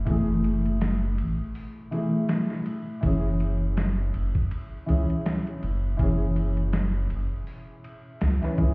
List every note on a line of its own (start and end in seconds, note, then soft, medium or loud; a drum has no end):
0.00 0.05 E3 medium
0.00 0.08 A3 medium
0.00 0.11 G#4 medium
0.05 1.22 F#1 loud
0.05 1.87 E3 medium
0.05 1.89 A3 medium
0.05 kick medium
0.05 ride medium
0.11 1.90 G#4 medium
0.44 ride medium
0.65 ride soft
0.81 snare loud
0.81 ride medium
1.18 1.38 A1 medium
1.18 ride medium
1.55 open hi-hat medium
1.91 2.09 E3 medium
1.91 2.09 A3 medium
1.91 2.10 G#4 medium
1.91 ride medium
2.29 snare loud
2.29 ride medium
2.50 snare soft
2.66 ride medium
3.01 4.11 F#1 loud
3.01 4.83 E3 medium
3.01 4.85 C#4 medium
3.01 kick loud
3.01 ride medium
3.06 4.86 G#4 medium
3.40 ride medium
3.77 snare loud
3.77 ride medium
4.14 4.33 F#1 medium
4.14 ride medium
4.35 kick medium
4.51 ride medium
4.86 5.07 C#2 medium
4.86 5.04 E3 medium
4.86 5.05 C#4 medium
4.86 5.06 G#4 medium
4.86 ride medium
5.10 ride soft
5.26 snare loud
5.26 ride medium
5.47 ride soft
5.63 5.96 F#1 medium
5.63 ride medium
5.97 7.08 F#1 loud
5.97 7.80 E3 medium
5.97 7.81 C#4 medium
5.97 kick loud
5.97 ride medium
6.03 7.83 G#4 medium
6.36 ride medium
6.57 ride soft
6.73 snare loud
6.73 ride medium
7.10 7.29 F#1 medium
7.10 ride medium
7.47 open hi-hat medium
7.84 ride medium
8.21 8.41 C#2 medium
8.21 snare loud
8.21 ride medium
8.42 8.54 E3 medium
8.42 8.55 C#4 medium
8.42 8.56 B4 medium
8.42 snare soft
8.58 8.74 C#2 medium
8.58 8.74 E3 medium
8.58 8.74 C#4 medium
8.58 8.74 G#4 medium
8.58 kick medium
8.58 ride medium